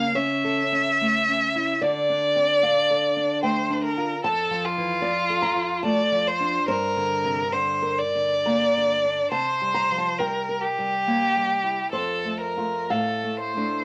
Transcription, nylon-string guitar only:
0.00 1.79 C#3 medium
0.00 0.15 A#3 soft
0.00 0.12 A5 loud
0.15 0.61 C#4 medium
0.15 1.79 C#5 medium
0.45 0.90 A4 medium
0.72 1.18 C#4 medium
1.01 1.46 A3 medium
1.29 1.73 C#4 medium
1.55 1.83 E4 medium
1.81 4.20 D3 medium
1.81 2.60 D5 medium
2.10 2.53 D4 medium
2.36 2.62 C4 soft
2.63 3.06 D4 medium
2.63 3.40 F5 loud
2.90 3.33 A4 medium
3.17 3.60 D4 medium
3.43 3.87 A3 medium
3.43 4.20 G5 loud
3.70 4.13 D4 medium
3.97 4.24 F4 medium
4.24 6.65 F2 medium
4.24 5.00 A5 loud
4.51 4.93 F3 medium
4.77 5.03 E3 medium
5.02 5.46 F3 medium
5.02 5.41 D5 loud
5.30 5.73 A4 medium
5.42 5.82 A#5 loud
5.55 6.00 F3 medium
5.83 6.29 A3 medium
5.83 6.64 A5 medium
6.12 6.57 F3 medium
6.40 6.69 D4 medium
6.68 9.28 G2 medium
6.68 8.42 C5 loud
6.96 7.41 D3 medium
7.24 7.53 C3 medium
7.52 8.02 D3 medium
7.82 8.34 A#4 medium
8.15 8.64 D3 medium
8.46 8.93 A#3 medium
8.46 9.28 A#5 medium
8.77 9.21 D3 soft
9.05 9.32 D4 soft
9.32 11.88 C3 medium
9.32 9.73 A5 medium
9.62 10.07 G3 medium
9.74 9.96 A#5 loud
9.91 10.19 F3 soft
9.98 10.19 A5 medium
10.20 10.65 G3 medium
10.20 10.60 G5 medium
10.49 10.94 A#4 medium
10.78 11.23 G3 medium
11.07 11.52 A#3 soft
11.36 11.81 G3 soft
11.64 11.92 E4 soft
11.93 12.88 F2 medium
11.93 12.87 C5 medium
12.25 12.56 A3 soft
12.57 12.87 A3 soft
12.57 12.87 F4 soft
12.90 13.84 A2 medium
12.90 13.84 F5 medium
13.24 13.56 A3 soft
13.57 13.84 A3 soft
13.57 13.84 D4 soft

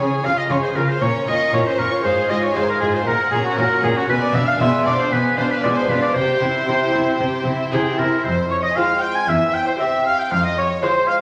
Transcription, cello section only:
0.25 0.33 C#3 soft
0.50 0.58 C#3 soft
0.76 0.84 C#3 soft
1.02 1.10 A#2 soft
1.28 1.36 A#2 soft
1.53 1.61 A#2 soft
1.79 1.87 A#2 soft
2.04 2.12 G#2 soft
2.30 2.38 G#2 soft
2.55 2.63 G#2 soft
2.81 2.89 G#2 soft
3.05 3.13 A#2 soft
3.32 3.40 A#2 soft
3.57 3.65 A#2 medium
3.82 3.90 A#2 soft
4.08 4.16 B2 medium
4.33 4.41 B2 medium
4.59 4.67 B2 medium
4.85 4.93 B2 medium
5.11 5.19 B2 soft
5.37 5.45 B2 soft
5.63 5.71 B2 soft
5.88 5.96 B2 medium
6.15 6.23 C3 soft
6.40 6.48 C3 soft
6.67 6.75 C3 soft
6.93 7.01 C3 soft
7.19 7.27 C3 soft
7.45 7.53 C3 soft
7.71 7.79 C3 soft
7.97 8.05 C3 soft
8.24 8.65 F2 medium
9.27 9.69 E2 medium
10.31 10.72 F2 medium

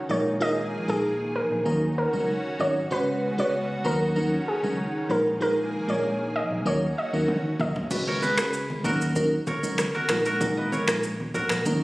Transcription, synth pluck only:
0.11 0.24 C#5 medium
0.42 0.55 D#5 loud
0.89 1.02 G#4 medium
1.36 1.49 A#4 medium
1.98 2.11 A#4 medium
2.61 2.74 C#5 medium
2.92 3.05 B4 medium
3.40 3.52 C#5 medium
3.86 3.99 A#4 medium
4.48 4.61 G#4 medium
5.11 5.24 A#4 medium
5.42 5.55 A#4 loud
5.90 6.02 C#5 medium
6.36 6.49 D#5 medium
6.67 6.80 C#5 medium
6.98 7.11 D#5 medium
7.61 7.74 D#5 medium

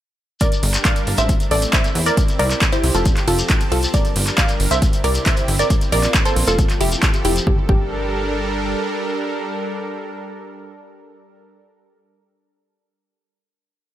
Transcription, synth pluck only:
0.41 0.80 A#4 medium
0.41 0.80 D5 loud
0.85 1.15 D5 medium
0.85 1.15 F5 loud
1.18 1.48 C5 medium
1.18 1.48 E5 medium
1.51 1.71 A4 medium
1.51 1.71 D5 medium
1.73 2.03 C5 medium
1.73 2.03 E5 medium
2.06 2.36 A#4 medium
2.06 2.36 D5 medium
2.39 2.69 A#4 medium
2.39 2.69 D5 loud
2.73 2.92 E4 medium
2.73 2.92 C5 medium
2.95 3.24 F4 medium
2.95 3.24 A4 medium
3.28 3.67 F4 medium
3.28 3.67 A4 medium
3.72 3.92 F4 medium
3.72 3.92 A4 medium
3.94 4.33 A#4 medium
3.94 4.33 D5 loud
4.38 4.68 D5 medium
4.38 4.68 F5 loud
4.71 5.01 C5 medium
4.71 5.01 E5 medium
5.04 5.24 A#4 medium
5.04 5.24 D5 medium
5.26 5.56 C5 medium
5.26 5.56 E5 medium
5.59 5.89 A#4 medium
5.59 5.89 D5 medium
5.92 6.22 A#4 medium
5.92 6.22 D5 loud
6.26 6.45 A4 medium
6.26 6.45 C5 medium
6.48 6.77 F4 medium
6.48 6.77 A4 loud
6.81 7.20 E4 medium
6.81 7.20 G4 medium
7.25 7.45 E4 medium
7.25 7.45 G4 medium
7.47 7.59 G4 medium
7.69 11.64 G4 loud

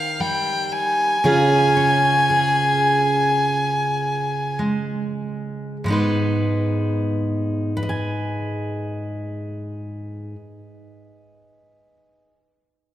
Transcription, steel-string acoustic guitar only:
0.00 1.16 D#3 medium
0.00 1.17 D#4 medium
0.00 1.16 A#4 medium
0.20 1.17 G3 medium
1.24 5.85 C#3 medium
1.24 1.75 C#4 medium
1.24 5.77 F4 medium
1.24 2.29 G#4 medium
1.77 5.77 C#4 soft
2.30 5.92 G#4 medium
4.59 5.76 G#3 soft
5.84 10.34 G#2 medium
5.84 10.35 G#3 medium
5.88 7.76 B3 medium
5.88 7.82 D#4 soft
5.88 7.77 B4 soft
7.77 12.26 B4 medium
7.83 12.32 D#5 medium
7.89 12.39 G#5 medium

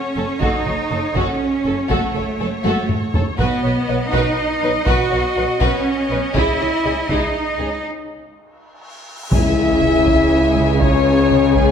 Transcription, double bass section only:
0.16 0.24 F#1 soft
0.41 0.49 F#1 medium
0.66 0.74 F#1 soft
0.91 0.99 F#1 soft
1.15 1.23 F#1 medium
1.65 1.73 F#1 soft
1.90 1.98 F#1 medium
2.15 2.23 F#1 soft
2.39 2.47 F#1 soft
2.65 2.73 F#1 medium
3.14 3.22 F#1 soft
3.40 3.48 B1 medium
3.64 3.72 B1 soft
3.88 3.96 B1 soft
4.13 4.21 B1 medium
4.62 4.70 B1 soft
4.86 4.94 B1 medium
5.11 5.19 B1 soft
5.36 5.44 B1 soft
5.61 5.69 B1 medium
6.10 6.18 B1 medium
6.36 6.44 C#2 medium
6.60 6.68 C#2 soft
6.85 6.93 C#2 soft
7.09 7.17 C#2 medium
7.58 7.66 C#2 soft
9.32 11.71 C#2 medium

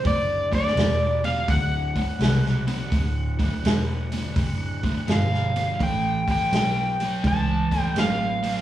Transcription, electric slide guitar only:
0.07 0.53 D5 medium
0.55 1.28 D5 loud
1.25 1.50 F5 medium
1.50 5.19 F#5 medium
5.13 5.83 F5 medium
5.83 6.30 G5 medium
6.31 7.27 G5 medium
7.27 7.81 A5 medium
7.81 8.00 G5 medium
7.99 8.61 F5 medium

